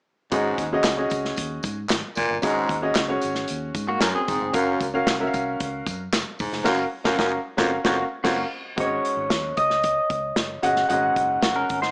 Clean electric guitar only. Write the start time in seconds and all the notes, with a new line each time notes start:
3.89 A#3 F#4
4.02 C#4 A#4
4.15 C4 G#4
7.85 A#3 F#4
8.24 A#3 F#4
11.43 A#3 F#4
11.56 C#4 A#4
11.82 D#4 C5